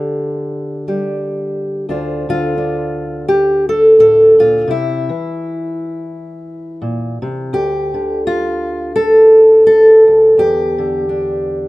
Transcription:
0, 0, Header, 1, 2, 480
1, 0, Start_track
1, 0, Key_signature, -1, "minor"
1, 0, Tempo, 708383
1, 1271, Time_signature, 4, 2, 24, 8
1, 7916, End_track
2, 0, Start_track
2, 0, Title_t, "Steel-string acoustic guitar"
2, 0, Program_c, 0, 25
2, 0, Note_on_c, 0, 50, 63
2, 0, Note_on_c, 0, 67, 44
2, 0, Note_on_c, 0, 74, 96
2, 588, Note_off_c, 0, 67, 0
2, 595, Note_on_c, 0, 55, 44
2, 598, Note_on_c, 0, 67, 43
2, 1250, Note_off_c, 0, 67, 0
2, 1259, Note_off_c, 0, 74, 0
2, 1274, Note_off_c, 0, 55, 0
2, 1279, Note_on_c, 0, 38, 67
2, 1281, Note_on_c, 0, 62, 47
2, 1288, Note_on_c, 0, 65, 48
2, 1293, Note_on_c, 0, 72, 46
2, 1543, Note_off_c, 0, 50, 0
2, 1549, Note_off_c, 0, 65, 0
2, 1551, Note_on_c, 0, 50, 58
2, 1557, Note_on_c, 0, 65, 94
2, 1737, Note_off_c, 0, 62, 0
2, 1745, Note_on_c, 0, 62, 46
2, 2223, Note_off_c, 0, 65, 0
2, 2226, Note_on_c, 0, 67, 95
2, 2497, Note_off_c, 0, 67, 0
2, 2500, Note_on_c, 0, 69, 93
2, 2702, Note_on_c, 0, 45, 58
2, 2703, Note_off_c, 0, 69, 0
2, 2711, Note_on_c, 0, 69, 101
2, 2967, Note_off_c, 0, 45, 0
2, 2970, Note_on_c, 0, 46, 64
2, 2978, Note_off_c, 0, 69, 0
2, 2980, Note_on_c, 0, 65, 89
2, 3162, Note_off_c, 0, 62, 0
2, 3165, Note_off_c, 0, 46, 0
2, 3168, Note_on_c, 0, 48, 73
2, 3186, Note_off_c, 0, 65, 0
2, 3186, Note_off_c, 0, 72, 0
2, 3189, Note_on_c, 0, 64, 83
2, 3191, Note_off_c, 0, 50, 0
2, 3193, Note_off_c, 0, 38, 0
2, 3450, Note_on_c, 0, 52, 60
2, 3455, Note_off_c, 0, 48, 0
2, 4619, Note_on_c, 0, 46, 60
2, 4890, Note_off_c, 0, 46, 0
2, 4892, Note_on_c, 0, 48, 65
2, 5078, Note_off_c, 0, 52, 0
2, 5102, Note_on_c, 0, 38, 73
2, 5103, Note_off_c, 0, 48, 0
2, 5104, Note_off_c, 0, 64, 0
2, 5107, Note_on_c, 0, 67, 92
2, 5380, Note_on_c, 0, 50, 57
2, 5590, Note_off_c, 0, 67, 0
2, 5603, Note_on_c, 0, 65, 91
2, 6066, Note_off_c, 0, 65, 0
2, 6069, Note_on_c, 0, 69, 104
2, 6542, Note_off_c, 0, 69, 0
2, 6550, Note_on_c, 0, 69, 105
2, 6819, Note_off_c, 0, 38, 0
2, 6827, Note_on_c, 0, 38, 58
2, 7027, Note_off_c, 0, 38, 0
2, 7029, Note_on_c, 0, 40, 70
2, 7033, Note_off_c, 0, 69, 0
2, 7041, Note_on_c, 0, 67, 99
2, 7298, Note_off_c, 0, 50, 0
2, 7306, Note_on_c, 0, 50, 58
2, 7515, Note_on_c, 0, 62, 48
2, 7916, Note_off_c, 0, 40, 0
2, 7916, Note_off_c, 0, 50, 0
2, 7916, Note_off_c, 0, 62, 0
2, 7916, Note_off_c, 0, 67, 0
2, 7916, End_track
0, 0, End_of_file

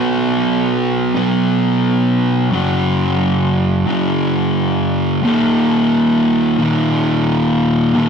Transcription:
0, 0, Header, 1, 2, 480
1, 0, Start_track
1, 0, Key_signature, -6, "minor"
1, 0, Tempo, 906344
1, 1335, Time_signature, 6, 3, 24, 8
1, 4286, End_track
2, 0, Start_track
2, 0, Title_t, "Distorted electric guitar"
2, 0, Program_c, 0, 30
2, 0, Note_on_c, 0, 47, 50
2, 0, Note_on_c, 0, 54, 49
2, 0, Note_on_c, 0, 59, 58
2, 596, Note_off_c, 0, 47, 0
2, 602, Note_off_c, 0, 59, 0
2, 608, Note_on_c, 0, 59, 46
2, 618, Note_off_c, 0, 54, 0
2, 620, Note_on_c, 0, 54, 38
2, 630, Note_on_c, 0, 47, 41
2, 1318, Note_off_c, 0, 59, 0
2, 1324, Note_off_c, 0, 54, 0
2, 1328, Note_on_c, 0, 42, 51
2, 1329, Note_off_c, 0, 47, 0
2, 1339, Note_on_c, 0, 49, 51
2, 1349, Note_on_c, 0, 54, 59
2, 2038, Note_off_c, 0, 42, 0
2, 2043, Note_off_c, 0, 49, 0
2, 2045, Note_off_c, 0, 54, 0
2, 2051, Note_on_c, 0, 54, 51
2, 2062, Note_on_c, 0, 49, 42
2, 2072, Note_on_c, 0, 42, 38
2, 2759, Note_off_c, 0, 54, 0
2, 2764, Note_off_c, 0, 49, 0
2, 2766, Note_off_c, 0, 42, 0
2, 2768, Note_on_c, 0, 39, 72
2, 2779, Note_on_c, 0, 46, 80
2, 2788, Note_on_c, 0, 51, 84
2, 3482, Note_off_c, 0, 46, 0
2, 3485, Note_off_c, 0, 51, 0
2, 3487, Note_on_c, 0, 51, 63
2, 3500, Note_on_c, 0, 46, 60
2, 3506, Note_off_c, 0, 39, 0
2, 3508, Note_on_c, 0, 39, 49
2, 4202, Note_off_c, 0, 46, 0
2, 4203, Note_off_c, 0, 39, 0
2, 4205, Note_on_c, 0, 39, 72
2, 4216, Note_on_c, 0, 46, 83
2, 4224, Note_off_c, 0, 51, 0
2, 4226, Note_on_c, 0, 51, 85
2, 4286, Note_off_c, 0, 39, 0
2, 4286, Note_off_c, 0, 46, 0
2, 4286, Note_off_c, 0, 51, 0
2, 4286, End_track
0, 0, End_of_file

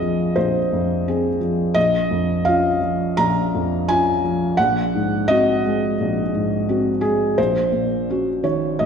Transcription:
0, 0, Header, 1, 2, 480
1, 0, Start_track
1, 0, Key_signature, -5, "minor"
1, 0, Tempo, 702576
1, 1196, Time_signature, 4, 2, 24, 8
1, 6052, End_track
2, 0, Start_track
2, 0, Title_t, "Felt piano"
2, 0, Program_c, 0, 0
2, 0, Control_c, 0, 64, 127
2, 0, Note_on_c, 0, 34, 63
2, 0, Note_on_c, 0, 41, 56
2, 0, Note_on_c, 0, 60, 49
2, 0, Note_on_c, 0, 68, 51
2, 0, Note_on_c, 0, 75, 98
2, 0, Note_on_c, 0, 77, 84
2, 14, Note_on_c, 0, 53, 52
2, 219, Note_off_c, 0, 34, 0
2, 240, Note_off_c, 0, 75, 0
2, 244, Note_on_c, 0, 72, 86
2, 250, Note_on_c, 0, 34, 60
2, 394, Note_off_c, 0, 53, 0
2, 495, Note_off_c, 0, 41, 0
2, 495, Note_on_c, 0, 41, 61
2, 721, Note_off_c, 0, 72, 0
2, 738, Note_off_c, 0, 68, 0
2, 738, Note_on_c, 0, 68, 60
2, 740, Note_off_c, 0, 60, 0
2, 740, Note_on_c, 0, 60, 50
2, 870, Note_off_c, 0, 41, 0
2, 944, Note_off_c, 0, 68, 0
2, 945, Note_off_c, 0, 60, 0
2, 962, Note_on_c, 0, 53, 52
2, 1171, Note_off_c, 0, 34, 0
2, 1192, Note_on_c, 0, 75, 103
2, 1198, Note_off_c, 0, 53, 0
2, 1201, Note_on_c, 0, 34, 61
2, 1208, Control_c, 0, 64, 0
2, 1215, Note_off_c, 0, 77, 0
2, 1312, Control_c, 0, 64, 127
2, 1440, Note_on_c, 0, 41, 58
2, 1671, Note_off_c, 0, 75, 0
2, 1673, Note_on_c, 0, 77, 92
2, 1683, Note_on_c, 0, 61, 57
2, 1690, Note_on_c, 0, 65, 58
2, 1821, Note_off_c, 0, 41, 0
2, 1898, Note_off_c, 0, 61, 0
2, 1902, Note_off_c, 0, 65, 0
2, 1917, Note_on_c, 0, 53, 49
2, 2139, Note_off_c, 0, 34, 0
2, 2164, Note_off_c, 0, 77, 0
2, 2167, Note_on_c, 0, 82, 109
2, 2169, Note_on_c, 0, 34, 65
2, 2310, Note_off_c, 0, 53, 0
2, 2423, Note_on_c, 0, 41, 59
2, 2646, Note_off_c, 0, 82, 0
2, 2654, Note_on_c, 0, 80, 106
2, 2660, Note_on_c, 0, 61, 52
2, 2662, Note_on_c, 0, 65, 60
2, 2797, Note_off_c, 0, 41, 0
2, 2868, Note_off_c, 0, 61, 0
2, 2869, Note_off_c, 0, 65, 0
2, 2899, Note_on_c, 0, 53, 50
2, 3096, Note_off_c, 0, 34, 0
2, 3124, Note_on_c, 0, 78, 102
2, 3125, Note_off_c, 0, 80, 0
2, 3128, Note_off_c, 0, 53, 0
2, 3133, Control_c, 0, 64, 0
2, 3137, Note_on_c, 0, 34, 73
2, 3242, Control_c, 0, 64, 127
2, 3381, Note_on_c, 0, 44, 53
2, 3599, Note_off_c, 0, 78, 0
2, 3606, Note_on_c, 0, 75, 105
2, 3615, Note_on_c, 0, 60, 52
2, 3622, Note_on_c, 0, 66, 60
2, 3754, Note_off_c, 0, 44, 0
2, 3825, Note_off_c, 0, 60, 0
2, 3829, Note_off_c, 0, 66, 0
2, 3866, Note_on_c, 0, 56, 57
2, 4063, Note_off_c, 0, 34, 0
2, 4101, Note_on_c, 0, 34, 59
2, 4241, Note_off_c, 0, 56, 0
2, 4335, Note_on_c, 0, 44, 59
2, 4570, Note_on_c, 0, 60, 53
2, 4572, Note_on_c, 0, 66, 58
2, 4711, Note_off_c, 0, 44, 0
2, 4781, Note_off_c, 0, 60, 0
2, 4782, Note_off_c, 0, 66, 0
2, 4790, Note_on_c, 0, 68, 88
2, 4801, Note_on_c, 0, 56, 49
2, 4805, Note_off_c, 0, 75, 0
2, 5021, Note_off_c, 0, 34, 0
2, 5033, Note_off_c, 0, 68, 0
2, 5039, Note_off_c, 0, 56, 0
2, 5040, Note_on_c, 0, 34, 65
2, 5041, Note_on_c, 0, 72, 99
2, 5051, Control_c, 0, 64, 0
2, 5148, Control_c, 0, 64, 127
2, 5276, Note_on_c, 0, 46, 57
2, 5534, Note_on_c, 0, 61, 46
2, 5538, Note_on_c, 0, 66, 52
2, 5663, Note_off_c, 0, 46, 0
2, 5745, Note_off_c, 0, 61, 0
2, 5746, Note_off_c, 0, 66, 0
2, 5762, Note_off_c, 0, 72, 0
2, 5762, Note_on_c, 0, 51, 50
2, 5765, Note_on_c, 0, 73, 75
2, 5975, Note_off_c, 0, 34, 0
2, 6004, Note_off_c, 0, 73, 0
2, 6006, Note_on_c, 0, 75, 89
2, 6014, Note_on_c, 0, 34, 55
2, 6052, Note_off_c, 0, 34, 0
2, 6052, Note_off_c, 0, 51, 0
2, 6052, Note_off_c, 0, 75, 0
2, 6052, End_track
0, 0, End_of_file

